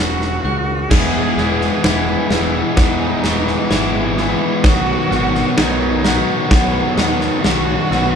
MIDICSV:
0, 0, Header, 1, 8, 480
1, 0, Start_track
1, 0, Tempo, 933271
1, 464, Time_signature, 4, 2, 24, 8
1, 4194, End_track
2, 0, Start_track
2, 0, Title_t, "Glockenspiel"
2, 0, Program_c, 0, 9
2, 0, Note_on_c, 0, 88, 65
2, 225, Note_off_c, 0, 88, 0
2, 231, Note_on_c, 0, 90, 71
2, 468, Note_off_c, 0, 90, 0
2, 472, Note_on_c, 0, 88, 74
2, 708, Note_off_c, 0, 88, 0
2, 711, Note_on_c, 0, 90, 62
2, 948, Note_off_c, 0, 90, 0
2, 952, Note_on_c, 0, 92, 66
2, 1188, Note_off_c, 0, 92, 0
2, 1194, Note_on_c, 0, 88, 66
2, 1669, Note_off_c, 0, 88, 0
2, 1672, Note_on_c, 0, 85, 65
2, 2148, Note_on_c, 0, 87, 62
2, 2149, Note_off_c, 0, 85, 0
2, 2383, Note_off_c, 0, 87, 0
2, 2389, Note_on_c, 0, 87, 81
2, 2627, Note_off_c, 0, 87, 0
2, 2631, Note_on_c, 0, 90, 58
2, 2868, Note_off_c, 0, 90, 0
2, 2870, Note_on_c, 0, 92, 74
2, 3107, Note_on_c, 0, 90, 73
2, 3108, Note_off_c, 0, 92, 0
2, 3587, Note_off_c, 0, 90, 0
2, 3588, Note_on_c, 0, 87, 71
2, 4067, Note_off_c, 0, 87, 0
2, 4068, Note_on_c, 0, 88, 71
2, 4194, Note_off_c, 0, 88, 0
2, 4194, End_track
3, 0, Start_track
3, 0, Title_t, "Analog synth pad"
3, 0, Program_c, 1, 89
3, 0, Note_on_c, 1, 66, 67
3, 0, Note_on_c, 1, 70, 65
3, 0, Note_on_c, 1, 73, 63
3, 0, Note_on_c, 1, 78, 78
3, 444, Note_off_c, 1, 66, 0
3, 444, Note_off_c, 1, 73, 0
3, 445, Note_off_c, 1, 70, 0
3, 446, Note_off_c, 1, 78, 0
3, 461, Note_on_c, 1, 68, 68
3, 461, Note_on_c, 1, 80, 67
3, 463, Note_on_c, 1, 71, 61
3, 465, Note_on_c, 1, 83, 76
3, 2364, Note_off_c, 1, 68, 0
3, 2364, Note_off_c, 1, 80, 0
3, 2365, Note_off_c, 1, 71, 0
3, 2366, Note_off_c, 1, 83, 0
3, 2391, Note_on_c, 1, 63, 63
3, 2391, Note_on_c, 1, 82, 70
3, 2393, Note_on_c, 1, 78, 65
3, 2393, Note_on_c, 1, 83, 79
3, 4194, Note_off_c, 1, 63, 0
3, 4194, Note_off_c, 1, 78, 0
3, 4194, Note_off_c, 1, 82, 0
3, 4194, Note_off_c, 1, 83, 0
3, 4194, End_track
4, 0, Start_track
4, 0, Title_t, "Cello"
4, 0, Program_c, 2, 42
4, 0, Note_on_c, 2, 66, 90
4, 460, Note_on_c, 2, 68, 95
4, 467, Note_off_c, 2, 66, 0
4, 942, Note_on_c, 2, 64, 80
4, 950, Note_off_c, 2, 68, 0
4, 1418, Note_on_c, 2, 63, 90
4, 1425, Note_off_c, 2, 64, 0
4, 1896, Note_on_c, 2, 64, 84
4, 1903, Note_off_c, 2, 63, 0
4, 2374, Note_off_c, 2, 64, 0
4, 2377, Note_on_c, 2, 66, 102
4, 2841, Note_off_c, 2, 66, 0
4, 2862, Note_on_c, 2, 63, 87
4, 3323, Note_off_c, 2, 63, 0
4, 3332, Note_on_c, 2, 59, 87
4, 3809, Note_on_c, 2, 66, 90
4, 3817, Note_off_c, 2, 59, 0
4, 4194, Note_off_c, 2, 66, 0
4, 4194, End_track
5, 0, Start_track
5, 0, Title_t, "Clean electric guitar"
5, 0, Program_c, 3, 27
5, 0, Note_on_c, 3, 56, 54
5, 0, Note_on_c, 3, 61, 57
5, 0, Note_on_c, 3, 66, 61
5, 0, Note_on_c, 3, 70, 66
5, 224, Note_off_c, 3, 56, 0
5, 225, Note_off_c, 3, 66, 0
5, 230, Note_on_c, 3, 56, 61
5, 467, Note_off_c, 3, 70, 0
5, 468, Note_off_c, 3, 56, 0
5, 468, Note_off_c, 3, 61, 0
5, 469, Note_on_c, 3, 40, 60
5, 709, Note_on_c, 3, 59, 61
5, 1188, Note_on_c, 3, 52, 56
5, 1420, Note_off_c, 3, 59, 0
5, 1426, Note_on_c, 3, 59, 60
5, 1667, Note_off_c, 3, 40, 0
5, 1906, Note_on_c, 3, 68, 64
5, 2142, Note_off_c, 3, 59, 0
5, 2148, Note_on_c, 3, 59, 57
5, 2384, Note_on_c, 3, 47, 64
5, 2386, Note_off_c, 3, 68, 0
5, 2387, Note_off_c, 3, 52, 0
5, 2387, Note_off_c, 3, 59, 0
5, 2624, Note_on_c, 3, 58, 61
5, 2869, Note_on_c, 3, 63, 59
5, 3109, Note_on_c, 3, 54, 60
5, 3585, Note_off_c, 3, 47, 0
5, 3586, Note_off_c, 3, 63, 0
5, 3592, Note_on_c, 3, 63, 62
5, 3825, Note_off_c, 3, 58, 0
5, 3834, Note_on_c, 3, 66, 71
5, 4194, Note_off_c, 3, 54, 0
5, 4194, Note_off_c, 3, 63, 0
5, 4194, Note_off_c, 3, 66, 0
5, 4194, End_track
6, 0, Start_track
6, 0, Title_t, "Distorted electric guitar"
6, 0, Program_c, 4, 30
6, 465, Note_on_c, 4, 52, 73
6, 468, Note_on_c, 4, 56, 74
6, 469, Note_on_c, 4, 59, 76
6, 472, Note_on_c, 4, 64, 75
6, 703, Note_off_c, 4, 52, 0
6, 707, Note_off_c, 4, 56, 0
6, 709, Note_on_c, 4, 52, 64
6, 710, Note_off_c, 4, 59, 0
6, 711, Note_off_c, 4, 64, 0
6, 713, Note_on_c, 4, 56, 68
6, 713, Note_on_c, 4, 59, 72
6, 717, Note_on_c, 4, 64, 73
6, 941, Note_off_c, 4, 52, 0
6, 942, Note_off_c, 4, 56, 0
6, 947, Note_on_c, 4, 52, 84
6, 948, Note_off_c, 4, 64, 0
6, 948, Note_on_c, 4, 56, 85
6, 949, Note_off_c, 4, 59, 0
6, 951, Note_on_c, 4, 59, 82
6, 954, Note_on_c, 4, 64, 86
6, 1183, Note_off_c, 4, 52, 0
6, 1185, Note_off_c, 4, 56, 0
6, 1189, Note_on_c, 4, 52, 66
6, 1191, Note_off_c, 4, 59, 0
6, 1192, Note_off_c, 4, 64, 0
6, 1192, Note_on_c, 4, 56, 72
6, 1193, Note_on_c, 4, 59, 71
6, 1198, Note_on_c, 4, 64, 80
6, 1418, Note_off_c, 4, 52, 0
6, 1422, Note_off_c, 4, 56, 0
6, 1424, Note_on_c, 4, 52, 87
6, 1426, Note_off_c, 4, 59, 0
6, 1429, Note_off_c, 4, 64, 0
6, 1429, Note_on_c, 4, 56, 84
6, 1432, Note_on_c, 4, 59, 85
6, 1435, Note_on_c, 4, 64, 86
6, 1660, Note_off_c, 4, 52, 0
6, 1664, Note_off_c, 4, 56, 0
6, 1667, Note_on_c, 4, 52, 71
6, 1668, Note_off_c, 4, 59, 0
6, 1669, Note_off_c, 4, 64, 0
6, 1671, Note_on_c, 4, 56, 69
6, 1674, Note_on_c, 4, 59, 68
6, 1675, Note_on_c, 4, 64, 70
6, 1900, Note_off_c, 4, 52, 0
6, 1903, Note_off_c, 4, 56, 0
6, 1905, Note_off_c, 4, 59, 0
6, 1906, Note_on_c, 4, 52, 77
6, 1909, Note_off_c, 4, 64, 0
6, 1909, Note_on_c, 4, 56, 75
6, 1912, Note_on_c, 4, 59, 83
6, 1915, Note_on_c, 4, 64, 92
6, 2134, Note_off_c, 4, 52, 0
6, 2139, Note_off_c, 4, 56, 0
6, 2140, Note_off_c, 4, 59, 0
6, 2141, Note_on_c, 4, 52, 69
6, 2144, Note_off_c, 4, 64, 0
6, 2145, Note_on_c, 4, 56, 70
6, 2146, Note_on_c, 4, 59, 74
6, 2150, Note_on_c, 4, 64, 76
6, 2369, Note_off_c, 4, 52, 0
6, 2371, Note_off_c, 4, 56, 0
6, 2371, Note_off_c, 4, 59, 0
6, 2373, Note_off_c, 4, 64, 0
6, 2384, Note_on_c, 4, 47, 74
6, 2387, Note_on_c, 4, 51, 85
6, 2391, Note_on_c, 4, 54, 84
6, 2392, Note_on_c, 4, 59, 81
6, 2395, Note_on_c, 4, 66, 78
6, 2618, Note_off_c, 4, 47, 0
6, 2620, Note_off_c, 4, 51, 0
6, 2624, Note_off_c, 4, 59, 0
6, 2624, Note_on_c, 4, 47, 69
6, 2626, Note_on_c, 4, 51, 78
6, 2629, Note_off_c, 4, 54, 0
6, 2630, Note_on_c, 4, 59, 75
6, 2631, Note_on_c, 4, 54, 74
6, 2632, Note_off_c, 4, 66, 0
6, 2634, Note_on_c, 4, 66, 77
6, 2857, Note_off_c, 4, 47, 0
6, 2862, Note_off_c, 4, 51, 0
6, 2863, Note_on_c, 4, 47, 78
6, 2867, Note_off_c, 4, 54, 0
6, 2867, Note_off_c, 4, 59, 0
6, 2868, Note_on_c, 4, 51, 85
6, 2869, Note_on_c, 4, 54, 92
6, 2872, Note_off_c, 4, 66, 0
6, 2873, Note_on_c, 4, 59, 100
6, 2874, Note_on_c, 4, 66, 84
6, 3097, Note_off_c, 4, 47, 0
6, 3100, Note_off_c, 4, 51, 0
6, 3103, Note_on_c, 4, 47, 77
6, 3105, Note_off_c, 4, 59, 0
6, 3106, Note_on_c, 4, 51, 77
6, 3107, Note_off_c, 4, 54, 0
6, 3109, Note_on_c, 4, 54, 73
6, 3111, Note_off_c, 4, 66, 0
6, 3111, Note_on_c, 4, 59, 83
6, 3113, Note_on_c, 4, 66, 92
6, 3337, Note_off_c, 4, 47, 0
6, 3337, Note_off_c, 4, 51, 0
6, 3342, Note_off_c, 4, 54, 0
6, 3343, Note_off_c, 4, 59, 0
6, 3343, Note_on_c, 4, 47, 95
6, 3344, Note_on_c, 4, 51, 86
6, 3345, Note_off_c, 4, 66, 0
6, 3348, Note_on_c, 4, 54, 87
6, 3349, Note_on_c, 4, 59, 95
6, 3351, Note_on_c, 4, 66, 99
6, 3574, Note_off_c, 4, 47, 0
6, 3578, Note_off_c, 4, 51, 0
6, 3580, Note_on_c, 4, 47, 73
6, 3583, Note_off_c, 4, 54, 0
6, 3584, Note_off_c, 4, 59, 0
6, 3584, Note_on_c, 4, 51, 78
6, 3586, Note_off_c, 4, 66, 0
6, 3589, Note_on_c, 4, 54, 84
6, 3590, Note_on_c, 4, 59, 74
6, 3593, Note_on_c, 4, 66, 81
6, 3817, Note_off_c, 4, 47, 0
6, 3819, Note_off_c, 4, 51, 0
6, 3823, Note_on_c, 4, 47, 81
6, 3824, Note_off_c, 4, 54, 0
6, 3825, Note_on_c, 4, 51, 96
6, 3827, Note_off_c, 4, 59, 0
6, 3828, Note_off_c, 4, 66, 0
6, 3830, Note_on_c, 4, 54, 87
6, 3833, Note_on_c, 4, 59, 86
6, 3834, Note_on_c, 4, 66, 97
6, 4058, Note_off_c, 4, 47, 0
6, 4060, Note_off_c, 4, 51, 0
6, 4062, Note_off_c, 4, 54, 0
6, 4064, Note_on_c, 4, 47, 78
6, 4065, Note_off_c, 4, 59, 0
6, 4066, Note_on_c, 4, 51, 75
6, 4067, Note_off_c, 4, 66, 0
6, 4068, Note_on_c, 4, 54, 74
6, 4071, Note_on_c, 4, 59, 80
6, 4073, Note_on_c, 4, 66, 84
6, 4194, Note_off_c, 4, 47, 0
6, 4194, Note_off_c, 4, 51, 0
6, 4194, Note_off_c, 4, 54, 0
6, 4194, Note_off_c, 4, 59, 0
6, 4194, Note_off_c, 4, 66, 0
6, 4194, End_track
7, 0, Start_track
7, 0, Title_t, "Picked electric bass"
7, 0, Program_c, 5, 34
7, 0, Note_on_c, 5, 28, 75
7, 199, Note_off_c, 5, 28, 0
7, 227, Note_on_c, 5, 37, 77
7, 441, Note_off_c, 5, 37, 0
7, 465, Note_on_c, 5, 28, 76
7, 624, Note_off_c, 5, 28, 0
7, 705, Note_on_c, 5, 28, 74
7, 865, Note_off_c, 5, 28, 0
7, 946, Note_on_c, 5, 28, 75
7, 1106, Note_off_c, 5, 28, 0
7, 1183, Note_on_c, 5, 28, 71
7, 1344, Note_off_c, 5, 28, 0
7, 1425, Note_on_c, 5, 40, 73
7, 1585, Note_off_c, 5, 40, 0
7, 1666, Note_on_c, 5, 28, 66
7, 1826, Note_off_c, 5, 28, 0
7, 1906, Note_on_c, 5, 32, 78
7, 2225, Note_off_c, 5, 32, 0
7, 2387, Note_on_c, 5, 35, 86
7, 2546, Note_off_c, 5, 35, 0
7, 2630, Note_on_c, 5, 32, 82
7, 2789, Note_off_c, 5, 32, 0
7, 2870, Note_on_c, 5, 35, 77
7, 3188, Note_off_c, 5, 35, 0
7, 3347, Note_on_c, 5, 35, 77
7, 3507, Note_off_c, 5, 35, 0
7, 3588, Note_on_c, 5, 39, 75
7, 3747, Note_off_c, 5, 39, 0
7, 3832, Note_on_c, 5, 35, 80
7, 3990, Note_off_c, 5, 35, 0
7, 4070, Note_on_c, 5, 35, 81
7, 4194, Note_off_c, 5, 35, 0
7, 4194, End_track
8, 0, Start_track
8, 0, Title_t, "Drums"
8, 109, Note_on_c, 9, 38, 29
8, 161, Note_off_c, 9, 38, 0
8, 468, Note_on_c, 9, 36, 87
8, 469, Note_on_c, 9, 38, 90
8, 469, Note_on_c, 9, 49, 94
8, 519, Note_off_c, 9, 36, 0
8, 521, Note_off_c, 9, 38, 0
8, 521, Note_off_c, 9, 49, 0
8, 709, Note_on_c, 9, 38, 29
8, 760, Note_off_c, 9, 38, 0
8, 829, Note_on_c, 9, 38, 30
8, 880, Note_off_c, 9, 38, 0
8, 947, Note_on_c, 9, 38, 93
8, 999, Note_off_c, 9, 38, 0
8, 1185, Note_on_c, 9, 38, 71
8, 1237, Note_off_c, 9, 38, 0
8, 1425, Note_on_c, 9, 38, 94
8, 1427, Note_on_c, 9, 36, 93
8, 1477, Note_off_c, 9, 38, 0
8, 1478, Note_off_c, 9, 36, 0
8, 1665, Note_on_c, 9, 38, 74
8, 1717, Note_off_c, 9, 38, 0
8, 1787, Note_on_c, 9, 38, 31
8, 1838, Note_off_c, 9, 38, 0
8, 1906, Note_on_c, 9, 38, 71
8, 1958, Note_off_c, 9, 38, 0
8, 2147, Note_on_c, 9, 38, 30
8, 2199, Note_off_c, 9, 38, 0
8, 2387, Note_on_c, 9, 38, 98
8, 2388, Note_on_c, 9, 36, 98
8, 2438, Note_off_c, 9, 38, 0
8, 2439, Note_off_c, 9, 36, 0
8, 2631, Note_on_c, 9, 38, 32
8, 2682, Note_off_c, 9, 38, 0
8, 2751, Note_on_c, 9, 38, 30
8, 2802, Note_off_c, 9, 38, 0
8, 2868, Note_on_c, 9, 38, 97
8, 2920, Note_off_c, 9, 38, 0
8, 3109, Note_on_c, 9, 38, 78
8, 3161, Note_off_c, 9, 38, 0
8, 3348, Note_on_c, 9, 36, 98
8, 3349, Note_on_c, 9, 38, 103
8, 3400, Note_off_c, 9, 36, 0
8, 3400, Note_off_c, 9, 38, 0
8, 3588, Note_on_c, 9, 38, 78
8, 3639, Note_off_c, 9, 38, 0
8, 3708, Note_on_c, 9, 38, 34
8, 3760, Note_off_c, 9, 38, 0
8, 3829, Note_on_c, 9, 38, 84
8, 3880, Note_off_c, 9, 38, 0
8, 4070, Note_on_c, 9, 38, 31
8, 4122, Note_off_c, 9, 38, 0
8, 4194, End_track
0, 0, End_of_file